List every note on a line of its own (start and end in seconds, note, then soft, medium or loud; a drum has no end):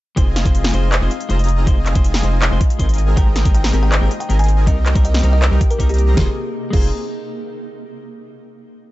0.16 0.44 F1 loud
0.16 2.96 D#3 medium
0.16 0.27 G#3 loud
0.16 2.96 G#3 medium
0.16 0.43 C4 medium
0.16 0.27 D#4 medium
0.16 0.54 D#4 medium
0.16 2.96 F4 loud
0.16 0.43 F4 medium
0.16 0.28 F4 medium
0.16 0.43 G#4 medium
0.16 0.28 C5 loud
0.16 0.43 D#5 medium
0.16 0.43 G#5 medium
0.16 kick loud
0.16 closed hi-hat medium
0.36 1.11 F5 medium
0.36 snare medium
0.36 closed hi-hat medium
0.44 0.72 F1 loud
0.44 0.55 G#3 medium
0.44 0.55 D#4 medium
0.44 0.71 F4 medium
0.44 0.56 F4 medium
0.44 0.71 G#4 medium
0.44 0.56 C5 medium
0.44 0.71 D#5 medium
0.44 0.71 G#5 loud
0.44 kick loud
0.44 closed hi-hat medium
0.55 0.83 D#4 medium
0.55 closed hi-hat medium
0.64 1.39 D#5 medium
0.64 snare medium
0.64 closed hi-hat medium
0.69 0.89 G#3 medium
0.69 closed hi-hat medium
0.73 1.00 F1 medium
0.73 0.99 C4 medium
0.73 0.90 D#4 medium
0.73 0.99 F4 medium
0.73 0.90 F4 medium
0.73 0.99 G#4 medium
0.73 0.90 C5 loud
0.73 0.99 D#5 medium
0.73 0.99 G#5 medium
0.73 closed hi-hat medium
0.83 0.92 D#4 loud
0.92 1.29 D#4 medium
0.92 clap loud
0.92 closed hi-hat medium
1.01 1.09 F1 loud
1.01 1.11 G#3 medium
1.01 1.10 C4 medium
1.01 1.12 D#4 medium
1.01 1.10 F4 medium
1.01 1.12 F4 medium
1.01 1.10 G#4 medium
1.01 1.12 C5 medium
1.01 1.10 D#5 medium
1.01 1.10 G#5 medium
1.11 1.86 F5 medium
1.11 closed hi-hat medium
1.21 closed hi-hat medium
1.29 1.65 F1 loud
1.29 1.40 G#3 loud
1.29 1.65 C4 medium
1.29 1.40 D#4 medium
1.29 1.58 D#4 medium
1.29 1.65 F4 medium
1.29 1.40 F4 medium
1.29 1.65 G#4 medium
1.29 1.41 C5 loud
1.29 1.65 D#5 medium
1.29 1.65 A#5 medium
1.29 closed hi-hat medium
1.39 2.14 D#5 medium
1.39 closed hi-hat medium
1.44 closed hi-hat medium
1.48 closed hi-hat medium
1.58 1.67 D#4 loud
1.66 1.94 F1 loud
1.66 1.77 G#3 loud
1.66 1.93 C4 medium
1.66 1.77 D#4 medium
1.66 2.04 D#4 medium
1.66 1.93 F4 medium
1.66 1.78 F4 medium
1.66 1.93 G#4 medium
1.66 1.78 C5 loud
1.66 1.93 D#5 medium
1.66 kick loud
1.66 closed hi-hat medium
1.86 2.60 F5 medium
1.86 clap medium
1.86 closed hi-hat medium
1.94 2.22 F1 loud
1.94 2.05 G#3 medium
1.94 2.21 C4 loud
1.94 2.05 D#4 medium
1.94 2.21 F4 medium
1.94 2.06 F4 medium
1.94 2.21 G#4 medium
1.94 2.06 C5 medium
1.94 2.21 D#5 medium
1.94 2.21 G#5 loud
1.94 kick loud
1.94 closed hi-hat medium
2.04 2.32 D#4 medium
2.04 closed hi-hat medium
2.14 2.89 D#5 medium
2.14 snare medium
2.14 closed hi-hat soft
2.19 2.39 G#3 medium
2.19 closed hi-hat medium
2.23 2.50 F1 medium
2.23 2.49 C4 medium
2.23 2.40 D#4 medium
2.23 2.49 F4 medium
2.23 2.40 F4 medium
2.23 2.49 G#4 medium
2.23 2.40 C5 loud
2.23 2.49 D#5 medium
2.23 2.49 G#5 medium
2.23 closed hi-hat medium
2.33 2.42 D#4 loud
2.42 2.79 D#4 medium
2.42 clap loud
2.42 closed hi-hat medium
2.51 2.59 F1 loud
2.51 2.61 G#3 medium
2.51 2.60 C4 medium
2.51 2.62 D#4 medium
2.51 2.60 F4 medium
2.51 2.62 F4 medium
2.51 2.60 G#4 medium
2.51 2.62 C5 medium
2.51 2.60 D#5 medium
2.51 2.60 G#5 medium
2.61 4.27 F5 medium
2.61 kick loud
2.61 closed hi-hat medium
2.70 closed hi-hat medium
2.79 3.15 G#1 loud
2.79 2.90 G#3 loud
2.79 3.15 C4 medium
2.79 2.90 D#4 medium
2.79 3.07 D#4 medium
2.79 2.90 F4 loud
2.79 3.15 G#4 medium
2.79 3.15 A#4 medium
2.79 2.91 C5 loud
2.79 3.15 D#5 medium
2.79 3.15 G#5 medium
2.79 kick medium
2.79 closed hi-hat medium
2.89 3.35 D#5 medium
2.89 closed hi-hat medium
2.94 closed hi-hat medium
2.98 6.14 C3 medium
2.98 6.14 A#3 medium
2.98 closed hi-hat medium
3.08 3.17 D#4 loud
3.16 3.44 G#1 medium
3.16 3.27 G#3 loud
3.16 3.27 C4 medium
3.16 3.43 C4 medium
3.16 3.28 G4 medium
3.16 3.43 G#4 medium
3.16 3.43 A#4 medium
3.16 3.28 A#4 loud
3.16 3.43 D#5 medium
3.16 3.46 G5 loud
3.16 3.43 G5 medium
3.16 kick loud
3.16 closed hi-hat medium
3.36 4.10 D#5 medium
3.36 snare medium
3.36 closed hi-hat medium
3.44 3.72 G#1 loud
3.44 3.55 G#3 medium
3.44 3.55 C4 medium
3.44 3.71 C4 loud
3.44 3.56 G4 medium
3.44 3.71 G#4 medium
3.44 3.56 A#4 medium
3.44 3.71 D#5 medium
3.44 kick loud
3.44 closed hi-hat medium
3.54 3.82 D#4 medium
3.54 3.76 G5 medium
3.54 closed hi-hat medium
3.64 4.39 C5 medium
3.64 snare medium
3.64 closed hi-hat soft
3.69 3.89 G#3 medium
3.69 closed hi-hat medium
3.73 4.00 G#1 medium
3.73 3.90 C4 medium
3.73 3.99 C4 medium
3.73 3.90 G4 medium
3.73 3.99 G#4 medium
3.73 3.99 A#4 medium
3.73 3.90 A#4 loud
3.73 3.99 D#5 medium
3.73 3.99 G5 medium
3.73 closed hi-hat medium
3.83 3.92 D#4 loud
3.83 3.97 G5 medium
3.92 4.29 D#4 medium
3.92 clap loud
3.92 closed hi-hat medium
4.01 4.09 G#1 loud
4.01 4.11 G#3 medium
4.01 4.12 C4 medium
4.01 4.10 C4 medium
4.01 4.12 G4 medium
4.01 4.10 G#4 medium
4.01 4.10 A#4 medium
4.01 4.12 A#4 loud
4.01 4.10 D#5 medium
4.01 4.10 G5 medium
4.11 5.14 D#5 medium
4.11 closed hi-hat medium
4.20 4.35 G5 medium
4.20 closed hi-hat medium
4.29 4.69 G#1 loud
4.29 4.40 G#3 loud
4.29 4.40 C4 loud
4.29 4.65 C4 medium
4.29 4.58 D#4 medium
4.29 4.40 G4 medium
4.29 4.65 G#4 medium
4.29 4.65 A#4 medium
4.29 4.41 A#4 loud
4.29 4.65 D#5 medium
4.29 4.65 G#5 medium
4.29 closed hi-hat medium
4.39 6.07 C5 medium
4.39 4.61 G#5 loud
4.39 closed hi-hat medium
4.44 closed hi-hat medium
4.48 closed hi-hat medium
4.58 4.67 D#4 loud
4.66 4.94 C2 medium
4.66 4.77 G3 medium
4.66 4.77 C4 medium
4.66 4.93 C4 medium
4.66 4.72 D#4 medium
4.66 6.16 D#4 loud
4.66 4.78 D#4 medium
4.66 4.93 G4 medium
4.66 4.93 A#4 medium
4.66 4.78 A#4 loud
4.66 4.93 D#5 medium
4.66 4.97 D#5 medium
4.66 4.93 G5 medium
4.66 kick loud
4.66 closed hi-hat medium
4.86 4.94 G5 medium
4.86 clap medium
4.86 closed hi-hat medium
4.95 5.22 C2 loud
4.95 5.05 G3 medium
4.95 5.05 C4 medium
4.95 5.21 C4 loud
4.95 5.06 D#4 medium
4.95 5.21 G4 medium
4.95 5.21 A#4 medium
4.95 5.06 A#4 medium
4.95 5.21 D#5 medium
4.95 5.21 G5 loud
4.95 kick loud
4.95 closed hi-hat medium
5.05 5.12 D#4 medium
5.05 5.27 D#5 medium
5.05 closed hi-hat medium
5.14 5.19 D#5 medium
5.14 snare medium
5.14 closed hi-hat soft
5.19 5.39 G3 medium
5.19 closed hi-hat medium
5.23 5.50 C2 medium
5.23 5.40 C4 medium
5.23 5.49 C4 medium
5.23 5.40 D#4 medium
5.23 5.49 G4 medium
5.23 5.49 A#4 medium
5.23 5.40 A#4 loud
5.23 5.49 D#5 medium
5.23 5.49 G5 medium
5.23 closed hi-hat medium
5.33 5.40 D#4 loud
5.33 5.47 D#5 medium
5.42 5.47 D#4 medium
5.42 clap loud
5.42 closed hi-hat medium
5.51 5.59 C2 loud
5.51 5.61 G3 medium
5.51 5.62 C4 medium
5.51 5.61 C4 medium
5.51 5.62 D#4 medium
5.51 5.60 G4 medium
5.51 5.61 A#4 medium
5.51 5.62 A#4 medium
5.51 5.61 D#5 medium
5.51 5.61 G5 medium
5.61 5.64 G5 loud
5.61 kick loud
5.61 closed hi-hat medium
5.70 5.75 G4 medium
5.70 5.85 A#4 medium
5.70 closed hi-hat medium
5.79 6.15 C2 loud
5.79 5.90 G3 loud
5.79 5.90 C4 medium
5.79 6.15 C4 medium
5.79 5.90 D#4 medium
5.79 6.15 G4 medium
5.79 6.15 A#4 medium
5.79 5.91 A#4 loud
5.79 5.85 D#5 medium
5.79 6.15 D#5 medium
5.79 6.15 A#5 medium
5.79 kick medium
5.79 closed hi-hat medium
5.89 6.11 G4 medium
5.89 5.92 D#5 medium
5.89 closed hi-hat soft
5.94 closed hi-hat medium
5.98 6.03 G4 loud
5.98 closed hi-hat medium
6.08 6.11 C5 medium
6.14 6.28 F1 medium
6.14 6.26 G#3 medium
6.14 6.28 C4 medium
6.14 6.27 D#4 medium
6.14 6.28 D#4 loud
6.14 6.28 F4 medium
6.14 6.28 G#4 medium
6.14 6.28 G#5 loud
6.14 kick loud
6.14 snare medium
6.18 6.28 F4 medium
6.18 6.29 C5 loud
6.70 6.91 F1 medium
6.70 6.86 G#3 medium
6.70 6.87 C4 medium
6.70 6.87 D#4 medium
6.70 6.91 D#4 medium
6.70 6.87 F4 medium
6.70 6.88 F4 medium
6.70 6.87 G#4 medium
6.70 6.87 D#5 medium
6.70 6.87 G#5 medium
6.70 kick loud
6.70 crash medium
6.76 6.89 C5 medium